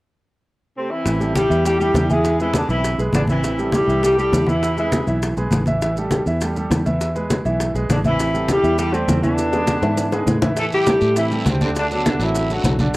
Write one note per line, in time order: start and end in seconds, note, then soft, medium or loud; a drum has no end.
0.77 0.90 C3 medium
0.77 0.91 A3 medium
0.77 0.90 C4 medium
0.91 1.35 E3 medium
0.91 1.36 C4 medium
0.91 1.35 E4 medium
1.05 1.47 A1 medium
1.05 1.18 E3 medium
1.05 1.18 E4 medium
1.05 1.18 E5 medium
1.05 high bongo medium
1.05 high conga soft
1.05 maracas medium
1.20 1.45 G3 medium
1.20 1.45 G4 medium
1.20 1.45 A4 medium
1.20 high conga soft
1.20 maracas soft
1.35 1.63 G3 medium
1.35 1.64 E4 medium
1.35 1.63 G4 loud
1.35 high bongo medium
1.35 high conga loud
1.35 maracas medium
1.50 1.92 E2 medium
1.50 1.62 E3 medium
1.50 1.62 E4 medium
1.50 1.63 E5 medium
1.50 maracas soft
1.65 1.77 G3 medium
1.65 1.78 G3 medium
1.65 1.79 E4 medium
1.65 1.78 G4 medium
1.65 1.78 A4 medium
1.65 high bongo medium
1.65 high conga soft
1.65 maracas medium
1.79 2.04 G3 medium
1.79 2.08 G3 medium
1.79 2.08 E4 medium
1.79 2.08 G4 medium
1.79 2.04 G4 medium
1.79 2.05 A4 medium
1.79 high conga soft
1.79 maracas soft
1.94 2.63 E2 medium
1.94 high bongo medium
1.94 low bongo medium
1.94 high conga medium
1.94 maracas medium
2.10 2.34 E3 medium
2.10 2.40 G#3 medium
2.10 2.39 E4 medium
2.10 2.35 E4 medium
2.10 2.40 G#4 loud
2.10 2.35 E5 medium
2.10 high conga medium
2.10 maracas soft
2.25 high bongo medium
2.25 high conga soft
2.25 maracas medium
2.40 2.54 E3 medium
2.40 2.64 G#3 medium
2.40 2.54 C4 medium
2.40 2.54 E4 medium
2.40 2.64 G#4 medium
2.40 2.64 B4 medium
2.40 high bongo soft
2.40 high conga soft
2.40 maracas soft
2.54 2.70 D3 medium
2.54 2.70 B3 medium
2.54 2.70 D4 medium
2.54 high bongo medium
2.54 high conga loud
2.54 maracas medium
2.68 2.97 B1 medium
2.68 2.93 E3 medium
2.68 2.97 E3 medium
2.68 2.97 C4 medium
2.68 2.93 E4 medium
2.68 2.97 E4 loud
2.68 2.93 E5 medium
2.68 high conga soft
2.68 maracas soft
2.84 high bongo medium
2.84 high conga soft
2.84 maracas medium
2.98 3.13 B1 medium
2.98 3.23 G#3 medium
2.98 3.24 G#4 medium
2.98 3.24 B4 medium
2.98 high bongo soft
2.98 high conga soft
2.98 maracas soft
3.13 3.83 A1 medium
3.13 3.21 D3 medium
3.13 3.21 B3 medium
3.13 3.21 D4 medium
3.13 high bongo medium
3.13 low bongo medium
3.13 high conga medium
3.13 maracas medium
3.27 3.70 E3 medium
3.27 3.41 E3 medium
3.27 3.71 C4 medium
3.27 3.70 E4 medium
3.27 3.41 E4 medium
3.27 3.42 E5 medium
3.27 high bongo soft
3.27 high conga medium
3.27 maracas soft
3.43 3.56 E3 medium
3.43 3.56 E4 medium
3.43 3.57 E5 medium
3.43 high bongo medium
3.43 high conga soft
3.43 maracas medium
3.58 3.83 G3 medium
3.58 3.83 G4 medium
3.58 3.84 A4 medium
3.58 high conga soft
3.58 maracas soft
3.72 4.02 G3 medium
3.72 4.02 E4 medium
3.72 4.02 G4 loud
3.72 high bongo medium
3.72 high conga medium
3.72 maracas medium
3.87 4.29 C2 medium
3.87 4.01 E3 medium
3.87 4.01 E4 medium
3.87 4.01 E5 medium
3.87 maracas soft
4.03 4.15 G3 medium
4.03 4.17 G3 medium
4.03 4.17 E4 medium
4.03 4.17 G4 medium
4.03 4.16 G4 medium
4.03 4.16 A4 medium
4.03 high bongo medium
4.03 high conga soft
4.03 maracas medium
4.17 4.42 G3 medium
4.17 4.46 G3 medium
4.17 4.46 E4 medium
4.17 4.42 G4 medium
4.17 4.46 G4 medium
4.17 4.42 A4 medium
4.17 high conga soft
4.17 maracas soft
4.32 5.02 E2 medium
4.32 high bongo medium
4.32 low bongo medium
4.32 high conga medium
4.32 maracas medium
4.47 4.77 E3 medium
4.47 4.72 E3 medium
4.47 4.77 B3 medium
4.47 4.77 E4 medium
4.47 4.72 E4 medium
4.47 4.72 E5 medium
4.47 high conga medium
4.47 maracas soft
4.62 high bongo medium
4.62 high conga soft
4.62 maracas medium
4.77 5.19 E3 medium
4.77 5.02 G#3 medium
4.77 5.19 C4 medium
4.77 5.19 E4 medium
4.77 5.02 G#4 medium
4.77 5.02 B4 medium
4.77 high bongo soft
4.77 high conga soft
4.77 maracas soft
4.92 high bongo medium
4.92 high conga loud
4.92 maracas medium
5.07 5.35 B1 medium
5.07 5.32 E3 medium
5.07 5.32 E4 medium
5.07 5.32 E5 medium
5.07 high conga soft
5.07 maracas soft
5.22 high bongo medium
5.22 high conga soft
5.22 maracas medium
5.37 5.51 B1 medium
5.37 5.62 G#3 medium
5.37 5.62 G#4 medium
5.37 5.62 B4 medium
5.37 high bongo soft
5.37 high conga soft
5.37 maracas soft
5.51 6.21 A1 medium
5.51 high bongo medium
5.51 low bongo medium
5.51 high conga medium
5.51 maracas medium
5.66 5.79 E3 medium
5.66 5.80 E4 medium
5.66 5.79 E5 medium
5.66 high bongo soft
5.66 high conga medium
5.66 maracas soft
5.81 5.94 E3 medium
5.81 5.94 E4 medium
5.81 5.94 E5 medium
5.81 high bongo medium
5.81 high conga soft
5.81 maracas medium
5.96 6.22 G3 medium
5.96 6.22 G4 medium
5.96 6.22 A4 medium
5.96 high conga soft
5.96 maracas soft
6.11 high bongo medium
6.11 high conga medium
6.11 maracas medium
6.26 6.68 E2 medium
6.26 6.39 E3 medium
6.26 6.39 E4 medium
6.26 6.39 E5 medium
6.26 maracas soft
6.41 6.54 G3 medium
6.41 6.54 G4 medium
6.41 6.54 A4 medium
6.41 high bongo medium
6.41 high conga soft
6.41 maracas medium
6.56 6.81 G3 medium
6.56 6.81 G4 medium
6.56 6.82 A4 medium
6.56 high conga soft
6.56 maracas soft
6.70 7.39 E2 medium
6.70 high bongo medium
6.70 low bongo medium
6.70 high conga medium
6.70 maracas medium
6.86 7.10 E3 medium
6.86 7.10 E4 medium
6.86 7.11 E5 medium
6.86 high conga medium
6.86 maracas soft
7.01 high bongo medium
7.01 high conga soft
7.01 maracas medium
7.15 7.40 G#3 medium
7.15 7.40 G#4 medium
7.15 7.40 B4 medium
7.15 high bongo soft
7.15 high conga soft
7.15 maracas soft
7.30 high bongo medium
7.30 high conga medium
7.30 maracas medium
7.45 7.73 B1 medium
7.45 7.70 E3 medium
7.45 7.70 E4 medium
7.45 7.70 E5 medium
7.45 high conga soft
7.45 maracas soft
7.60 high bongo medium
7.60 high conga soft
7.60 maracas medium
7.74 7.89 B1 medium
7.74 8.00 G#3 medium
7.74 8.00 G#4 medium
7.74 8.00 B4 medium
7.74 high bongo soft
7.74 high conga soft
7.74 maracas soft
7.89 8.58 A1 medium
7.89 7.98 D3 medium
7.89 7.98 B3 medium
7.89 7.98 D4 medium
7.89 high bongo medium
7.89 low bongo medium
7.89 high conga medium
7.89 maracas medium
8.04 8.17 E3 medium
8.04 8.47 E3 medium
8.04 8.47 C4 medium
8.04 8.17 E4 medium
8.04 8.47 E4 medium
8.04 8.17 E5 medium
8.04 high bongo soft
8.04 high conga medium
8.04 maracas soft
8.19 8.32 E3 medium
8.19 8.32 E4 medium
8.19 8.32 E5 medium
8.19 high bongo medium
8.19 high conga soft
8.19 maracas medium
8.34 8.59 G3 medium
8.34 8.59 G4 medium
8.34 8.59 A4 medium
8.34 high conga soft
8.34 maracas soft
8.49 8.77 G3 loud
8.49 8.78 E4 medium
8.49 8.77 G4 loud
8.49 high bongo medium
8.49 high conga loud
8.49 maracas medium
8.63 9.05 E2 medium
8.63 8.76 E3 medium
8.63 8.76 E4 medium
8.63 8.76 E5 medium
8.63 maracas soft
8.78 8.91 G3 medium
8.78 8.93 G3 medium
8.78 8.93 E4 medium
8.78 8.91 G4 medium
8.78 8.93 G4 loud
8.78 8.91 A4 medium
8.78 high bongo medium
8.78 high conga soft
8.78 maracas medium
8.93 9.17 G3 medium
8.93 9.23 A3 medium
8.93 9.23 C4 medium
8.93 9.18 G4 medium
8.93 9.18 A4 medium
8.93 high conga soft
8.93 maracas soft
9.08 9.77 E2 medium
9.08 high bongo medium
9.08 low bongo medium
9.08 high conga medium
9.08 maracas medium
9.22 10.38 D3 medium
9.22 9.47 E3 medium
9.22 10.38 B3 medium
9.22 10.38 D4 medium
9.22 9.47 E4 medium
9.22 9.48 E5 medium
9.22 high conga medium
9.22 maracas soft
9.38 high bongo medium
9.38 high conga soft
9.38 maracas medium
9.52 9.77 G#3 medium
9.52 9.77 G#4 medium
9.52 9.77 B4 medium
9.52 high bongo medium
9.52 high conga soft
9.52 maracas soft
9.67 high bongo medium
9.67 high conga medium
9.67 maracas medium
9.82 10.24 G#2 medium
9.82 10.07 E3 medium
9.82 10.07 E4 medium
9.82 10.07 E5 medium
9.82 low bongo medium
9.82 high conga soft
9.82 maracas soft
9.97 low bongo medium
9.97 high conga soft
9.97 maracas medium
10.12 10.37 G#3 medium
10.12 10.37 G#4 medium
10.12 10.37 B4 medium
10.12 low bongo medium
10.12 high conga soft
10.12 maracas soft
10.26 10.96 A2 medium
10.26 low bongo medium
10.26 high conga medium
10.26 maracas medium
10.42 10.54 E3 medium
10.42 10.54 E4 medium
10.42 10.54 E5 medium
10.42 low bongo loud
10.42 high conga medium
10.42 maracas soft
10.57 10.81 E3 medium
10.57 10.64 A3 medium
10.57 10.81 E4 medium
10.57 10.64 E4 medium
10.57 10.64 A4 loud
10.57 10.81 E5 medium
10.57 high bongo medium
10.57 high conga soft
10.57 long guiro medium
10.57 maracas medium
10.72 11.14 G3 medium
10.72 11.14 E4 medium
10.72 11.14 G4 loud
10.72 high conga soft
10.72 maracas soft
10.86 11.11 G3 medium
10.86 11.11 G4 medium
10.86 11.11 A4 medium
10.86 high bongo medium
10.86 high conga loud
10.86 short guiro medium
10.86 maracas medium
11.01 11.43 A2 loud
11.01 short guiro medium
11.01 maracas soft
11.16 11.29 E3 medium
11.16 11.47 E3 medium
11.16 11.47 C4 medium
11.16 11.29 E4 medium
11.16 11.47 E4 loud
11.16 11.29 E5 medium
11.16 high bongo medium
11.16 high conga soft
11.16 long guiro medium
11.16 maracas medium
11.31 11.55 G3 medium
11.31 11.56 G4 medium
11.31 11.56 A4 medium
11.31 high conga soft
11.31 maracas soft
11.46 12.15 D2 medium
11.46 11.61 C3 medium
11.46 11.61 A3 medium
11.46 11.61 C4 medium
11.46 high bongo medium
11.46 low bongo medium
11.46 high conga medium
11.46 short guiro medium
11.46 maracas medium
11.61 11.69 C3 medium
11.61 11.85 D3 medium
11.61 11.69 A3 medium
11.61 11.69 C4 medium
11.61 11.85 D4 medium
11.61 11.86 D5 medium
11.61 high conga medium
11.61 short guiro medium
11.61 maracas soft
11.75 11.84 D3 medium
11.75 11.84 A3 medium
11.75 11.84 D4 medium
11.75 high bongo medium
11.75 high conga soft
11.75 long guiro medium
11.75 maracas medium
11.91 12.19 D3 medium
11.91 12.03 F#3 medium
11.91 12.19 B3 medium
11.91 12.19 D4 medium
11.91 12.04 F#4 medium
11.91 12.03 A4 medium
11.91 high bongo soft
11.91 high conga soft
11.91 maracas soft
12.05 12.18 D3 medium
12.05 12.18 D4 medium
12.05 12.18 D5 medium
12.05 high bongo medium
12.05 high conga loud
12.05 short guiro medium
12.05 maracas medium
12.19 12.61 A1 medium
12.19 12.51 E3 medium
12.19 12.44 F#3 medium
12.19 12.51 C4 medium
12.19 12.51 E4 loud
12.19 12.45 F#4 medium
12.19 12.45 A4 medium
12.19 high conga soft
12.19 short guiro medium
12.19 maracas soft
12.35 high bongo medium
12.35 high conga soft
12.35 long guiro medium
12.35 maracas medium
12.50 12.74 F#3 medium
12.50 12.78 F#3 medium
12.50 12.78 D4 medium
12.50 12.74 F#4 medium
12.50 12.78 F#4 medium
12.50 12.75 A4 medium
12.50 high bongo soft
12.50 high conga soft
12.50 maracas soft
12.64 12.97 B1 medium
12.64 high bongo medium
12.64 low bongo medium
12.64 high conga medium
12.64 short guiro medium
12.64 maracas medium
12.79 12.92 D3 medium
12.79 12.92 D4 medium
12.79 12.92 D5 medium
12.79 high bongo soft
12.79 high conga medium
12.79 short guiro medium
12.79 maracas soft